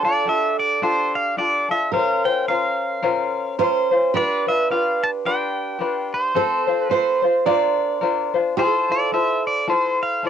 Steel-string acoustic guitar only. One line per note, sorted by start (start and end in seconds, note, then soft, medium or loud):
0.00 1.99 A4 medium
1.92 3.54 A#4 medium
3.59 4.13 C5 medium
4.14 6.36 B4 medium
6.36 6.91 A4 medium
6.91 7.46 C5 medium
7.46 8.30 D5 medium
8.57 10.29 A4 medium